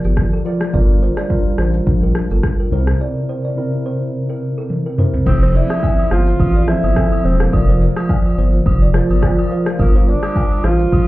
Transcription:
Already playing: tine electric piano F3 F4 A#4 D5
0.04 sub bass G1, kalimba G4, shaker
0.17 kick, cross-stick, shaker
0.33 kalimba A4
0.44 tine electric piano F3 F4 A#4 D5, kalimba A#4, shaker
0.61 cross-stick, shaker
0.72 sub bass G1, tine electric piano G3 D4 F4 A#4, kalimba D5, kick, shaker
1.02 kalimba C5, shaker
1.17 kalimba D5, cross-stick, shaker
1.29 tine electric piano G3 D4 F4 A#4, kick, shaker
1.58 sub bass A1, kalimba C5, cross-stick, shaker
1.73 shaker
1.87 sub bass A#1, kick, shaker
2.03 kalimba A#4
2.15 cross-stick, shaker
2.30 sub bass G1, kalimba A4, shaker
2.43 kick, cross-stick, shaker
2.60 kalimba A#4
2.71 sub bass C2, tine electric piano C3 C4 D#4 A#4, kalimba C5, shaker
2.79 tine electric piano E4
2.87 cross-stick, shaker
3.01 kalimba D5
3.29 kalimba C5
3.45 kalimba D5
3.55 tine electric piano C3 C4 E4 A#4
3.86 kalimba C5
4.30 kalimba A#4
4.58 kalimba A4
4.70 high tom
4.86 kalimba A#4
4.97 tine electric piano C3 C4 E4 A#4, kalimba C5, mid tom
5.14 floor tom
5.25 sub bass F1, tine electric piano F3 C4 E4 A4, tenor saxophone C4, kick, crash, high agogo, shaker
5.43 tenor saxophone C4, kalimba C5
5.55 tenor saxophone E4, kalimba D5, shaker
5.70 cross-stick, high agogo, shaker
5.83 kalimba E5, kick, low woodblock, shaker
5.99 high agogo
6.11 sub bass G1, tenor saxophone F4, kalimba C5, cross-stick, shaker
6.26 shaker
6.40 sub bass A1, kick, high agogo, shaker
6.56 kalimba D5
6.67 tine electric piano F3 C4 E4 A4, tenor saxophone E4, kalimba C5, cross-stick, shaker
6.83 sub bass G1, high agogo, shaker
6.95 tine electric piano F3 C4 E4 A4, kalimba A4, kick, cross-stick, low woodblock, shaker
7.12 high agogo
7.24 sub bass E1, tenor saxophone C4, kalimba C5, shaker
7.40 tenor saxophone A#3, kalimba A4, cross-stick, shaker
7.52 sub bass F1, tine electric piano F3 F4 A#4 D5, kick, high agogo, shaker
7.69 kalimba C5
7.82 kalimba D5, shaker
7.96 cross-stick, high agogo, shaker
8.09 kalimba F5, kick, low woodblock, shaker
8.26 high agogo
8.38 sub bass G1, kalimba C5, shaker
8.53 shaker
8.66 sub bass F1, kick, high agogo, shaker
8.82 kalimba D5
8.93 tine electric piano F3 F4 A#4 D5, kalimba C5, cross-stick, shaker
9.10 sub bass G1, high agogo, shaker
9.21 tine electric piano F3 F4 A#4 D5, kalimba A#4, kick, cross-stick, low woodblock, shaker
9.39 high agogo
9.51 kalimba C5, tine electric piano F5, shaker
9.66 kalimba A#4, cross-stick, shaker
9.78 sub bass G1, tine electric piano G3 D4 F4 A#4, tenor saxophone A#3, kick, high agogo, shaker
9.96 tenor saxophone A#3, kalimba C5
10.08 tenor saxophone D4, kalimba D5, shaker
10.23 cross-stick, high agogo, shaker
10.36 kalimba F5, kick, low woodblock, shaker
10.52 high agogo
10.64 sub bass A1, tenor saxophone F4, kalimba C5, cross-stick, shaker
10.79 shaker
10.92 sub bass A#1, kick, high agogo, shaker

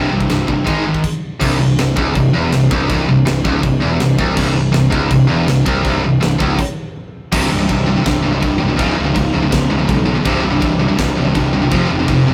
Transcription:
Already playing: distorted electric guitar C2 G2 C3 G3 E4
0.11 picked electric bass C1, distorted electric guitar C2 G2
0.20 kick
0.29 picked electric bass C1, distorted electric guitar C2 G2, snare, ride bell
0.48 picked electric bass G1, distorted electric guitar C2 G2, kick
0.65 picked electric bass G#1, distorted electric guitar G#2 D#3 G#3, kick, ride bell
0.85 distorted electric guitar G#2 D#3
0.94 kick
1.04 kick, crash
1.40 picked electric bass C1, distorted electric guitar C2, kick, crash, china
1.60 picked electric bass C1, distorted electric guitar C2
1.78 picked electric bass C1, distorted electric guitar C2, snare, china
1.97 picked electric bass C#1, distorted electric guitar C#2, kick
2.15 picked electric bass C1, distorted electric guitar C2, kick, china
2.35 picked electric bass E1, distorted electric guitar E2
2.52 picked electric bass C1, distorted electric guitar C2, snare, china
2.71 picked electric bass C1, distorted electric guitar C2, kick
2.90 picked electric bass C1, distorted electric guitar C2, kick, china
3.08 picked electric bass C1, distorted electric guitar C2
3.27 picked electric bass C1, distorted electric guitar C2, snare, china
3.45 picked electric bass C#1, distorted electric guitar C#2, kick
3.63 picked electric bass C1, distorted electric guitar C2, kick, china
3.82 picked electric bass E1, distorted electric guitar E2
4.00 picked electric bass C1, distorted electric guitar C2, snare, china
4.18 picked electric bass C1, distorted electric guitar C2, kick
4.37 picked electric bass C1, distorted electric guitar C2, kick, china, crash
4.55 picked electric bass C1, distorted electric guitar C2
4.72 picked electric bass C1, distorted electric guitar C2, snare, china
4.91 picked electric bass C#1, distorted electric guitar C#2, kick
5.11 picked electric bass C1, distorted electric guitar C2, kick, china
5.30 picked electric bass E1, distorted electric guitar E2
5.48 picked electric bass C1, distorted electric guitar C2, snare, china
5.66 picked electric bass C1, distorted electric guitar C2, kick
5.85 picked electric bass C1, distorted electric guitar C2, kick, china
6.04 picked electric bass C1, distorted electric guitar C2
6.22 picked electric bass C1, distorted electric guitar C2, snare, china
6.40 picked electric bass C#1, distorted electric guitar C#2, kick
6.59 kick, crash
7.33 picked electric bass C1, distorted electric guitar C2 G2 C3 G3 E4, kick, crash
7.51 picked electric bass C1, distorted electric guitar C2 G2
7.61 distorted electric guitar C2 G2
7.69 picked electric bass C1, distorted electric guitar C2 G2, kick, crash
7.88 distorted electric guitar C2 G2
7.97 distorted electric guitar C2 G2
8.06 picked electric bass C1, distorted electric guitar C2 G2, kick, snare, crash
8.24 picked electric bass C1, distorted electric guitar C2 G2
8.33 distorted electric guitar C2 G2
8.42 picked electric bass C1, distorted electric guitar C2 G2, kick, crash
8.60 picked electric bass C1, distorted electric guitar C2 G2
8.70 distorted electric guitar C2 G2
8.78 picked electric bass C#1, distorted electric guitar C#2 G#2 C#3 F3 F4, kick, crash
8.97 picked electric bass C#1, distorted electric guitar C#2 G#2
9.06 distorted electric guitar C#2 G#2
9.14 picked electric bass C#1, distorted electric guitar C#2 G#2, kick, crash
9.33 picked electric bass C#1, distorted electric guitar C#2 G#2
9.42 distorted electric guitar C#2 G#2
9.52 picked electric bass C#1, distorted electric guitar C#2 G#2, kick, snare, crash
9.70 picked electric bass C#1, distorted electric guitar C#2 G#2
9.79 distorted electric guitar C#2 G#2
9.88 picked electric bass B1, distorted electric guitar C#2 G#2, kick, crash
10.05 distorted electric guitar C#2 G#2
10.15 distorted electric guitar C#2 G#2
10.25 picked electric bass C1, distorted electric guitar C2 G2 C3 G3 E4, kick, crash
10.43 picked electric bass C1, distorted electric guitar C2 G2
10.52 distorted electric guitar C2 G2
10.61 picked electric bass C1, distorted electric guitar C2 G2, kick, crash
10.79 distorted electric guitar C2 G2
10.88 distorted electric guitar C2 G2
10.97 picked electric bass C1, distorted electric guitar C2 G2, kick, snare, crash
11.15 picked electric bass C1, distorted electric guitar C2 G2
11.25 distorted electric guitar C2 G2
11.35 picked electric bass C1, distorted electric guitar C2 G2, kick, crash
11.53 picked electric bass C1, distorted electric guitar C2 G2
11.62 distorted electric guitar C2 G2
11.70 picked electric bass F1, distorted electric guitar F2 C3 F3 G#3 C4 F4, kick, crash
11.90 picked electric bass F1, distorted electric guitar F2 C3
11.99 distorted electric guitar F2 C3
12.08 picked electric bass F1, distorted electric guitar F2 C3, kick, crash
12.28 picked electric bass F1, distorted electric guitar F2 C3

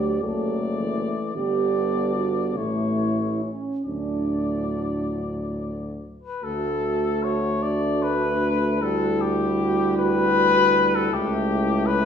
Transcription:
Already playing: tuba D2, trombone F#3, euphonium A3, french horn section G4, cornet D5
0.21 tuba F#1, trombone F#3, euphonium A3, french horn section A4, cornet D5
0.79 trombone E3
1.34 tuba G1, trombone D3, euphonium B3, french horn section G4, cornet D5
2.15 french horn section F#4
2.57 tuba A1, trombone A2, euphonium A3, french horn section E4, cornet C#5
3.42 french horn section C#4
3.85 tuba D2, trombone A2, euphonium F#3, french horn section D4, cornet D5
6.23 cornet B4
6.43 tuba D2, trombone A3, french horn section F#4, euphonium F#4, cornet A4
7.23 cornet C#5
7.63 french horn section D4, cornet D5
8.03 cornet B4
8.81 trombone G3, euphonium E4, french horn section F#4, cornet A4
9.21 cornet G4
9.97 cornet B4
10.95 cornet A4
11.12 tuba C#2, trombone A3, french horn section E4, cornet G4
11.86 cornet B4

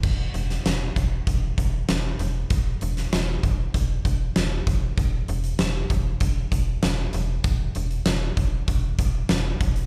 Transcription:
0.03 fm bass E1, kick, crash
0.34 fm bass E1, closed hi-hat
0.50 snare, closed hi-hat
0.66 fm bass E1, snare, closed hi-hat
0.96 fm bass E1, kick, closed hi-hat
1.27 fm bass E1, kick, closed hi-hat
1.58 fm bass E1, kick, closed hi-hat
1.89 fm bass E1, snare, closed hi-hat
2.19 fm bass E1, closed hi-hat
2.50 fm bass E1, kick, closed hi-hat
2.81 fm bass E1, closed hi-hat
2.97 snare, closed hi-hat
3.13 fm bass E1, snare, closed hi-hat
3.43 fm bass E1, kick, closed hi-hat
3.74 fm bass E1, kick, closed hi-hat
4.05 fm bass E1, kick, closed hi-hat
4.36 fm bass E1, snare, closed hi-hat
4.67 fm bass E1, kick, closed hi-hat
4.98 fm bass E1, kick, closed hi-hat
5.28 fm bass E1, closed hi-hat
5.44 closed hi-hat
5.59 fm bass E1, snare, closed hi-hat
5.90 fm bass E1, kick, closed hi-hat
6.20 fm bass E1, kick, closed hi-hat
6.52 fm bass E1, kick, closed hi-hat
6.83 fm bass E1, snare, closed hi-hat
7.13 fm bass E1, closed hi-hat
7.44 fm bass E1, kick, closed hi-hat
7.75 fm bass E1, closed hi-hat
7.91 closed hi-hat
8.06 fm bass E1, snare, closed hi-hat
8.37 fm bass E1, kick, closed hi-hat
8.68 fm bass E1, kick, closed hi-hat
8.99 fm bass E1, kick, closed hi-hat
9.29 fm bass E1, snare, closed hi-hat
9.61 fm bass E1, kick, closed hi-hat
9.76 closed hi-hat

